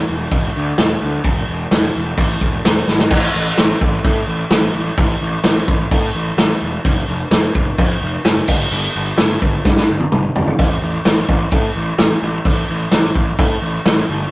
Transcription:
0.09 E1
0.31 E1, kick, crash
0.56 D2
0.78 E1, snare, crash
1.02 D2
1.24 E1, kick, crash
1.48 E1
1.71 E1, snare, crash
1.96 E1
2.18 A1, kick, crash
2.41 E1, kick
2.65 E1, snare, crash
2.87 G#1, snare
2.99 snare
3.10 A1, kick, crash
3.34 A1
3.58 A1, snare, crash
3.81 A1, kick
4.04 A2, kick, crash
4.27 A1
4.51 A1, snare, crash
4.74 A1
4.97 A1, kick, crash
5.21 A1
5.44 A1, snare, crash
5.68 A1, kick
5.91 A2, kick, crash
6.15 A1
6.37 A1, snare, crash
6.61 E1
6.85 F1, kick, crash
7.08 F1
7.31 F1, snare, crash
7.55 F1, kick
7.78 F2, kick, crash
8.01 F1
8.25 F#1, snare, crash
8.48 G1, kick, crash
8.71 G1, crash
8.96 G1
9.18 G1, snare, crash
9.42 G1, kick
9.65 G2, kick, snare
9.77 snare
9.90 G1
10.00 high tom
10.12 G1, mid tom
10.35 G1, floor tom
10.47 floor tom
10.59 A1, kick, crash
10.82 A1
11.05 A1, snare, crash
11.29 A1, kick
11.51 A2, kick, crash
11.76 A1
11.98 A1, snare, crash
12.23 A1
12.45 A1, kick, crash
12.70 A1
12.91 A1, snare, crash
13.15 A1, kick
13.39 A2, kick, crash
13.62 A1
13.86 A1, snare, crash
14.09 G1

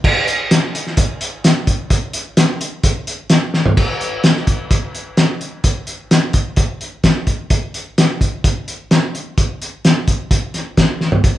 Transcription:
0.04 kick, crash
0.28 closed hi-hat
0.51 snare, closed hi-hat
0.75 closed hi-hat
0.87 snare
0.97 kick, closed hi-hat
1.21 closed hi-hat
1.44 snare, closed hi-hat
1.67 kick, closed hi-hat
1.90 kick, closed hi-hat
2.13 closed hi-hat
2.37 snare, closed hi-hat
2.61 closed hi-hat
2.83 kick, closed hi-hat
3.07 closed hi-hat
3.30 snare, closed hi-hat
3.54 snare
3.66 floor tom
3.77 kick, crash
4.01 closed hi-hat
4.24 snare, closed hi-hat
4.36 snare
4.47 kick, closed hi-hat
4.71 kick, closed hi-hat
4.95 closed hi-hat
5.17 snare, closed hi-hat
5.41 closed hi-hat
5.64 kick, closed hi-hat
5.87 closed hi-hat
6.11 snare, closed hi-hat
6.33 kick, closed hi-hat
6.56 kick, closed hi-hat
6.81 closed hi-hat
7.04 kick, snare, closed hi-hat
7.27 kick, closed hi-hat
7.50 kick, closed hi-hat
7.74 closed hi-hat
7.98 snare, closed hi-hat
8.21 kick, closed hi-hat
8.44 kick, closed hi-hat
8.68 closed hi-hat
8.91 snare, closed hi-hat
9.15 closed hi-hat
9.38 kick, closed hi-hat
9.62 closed hi-hat
9.85 snare, closed hi-hat
10.08 kick, closed hi-hat
10.31 kick, closed hi-hat
10.54 snare, closed hi-hat
10.77 kick, snare, closed hi-hat
11.01 snare
11.12 floor tom
11.24 kick, closed hi-hat

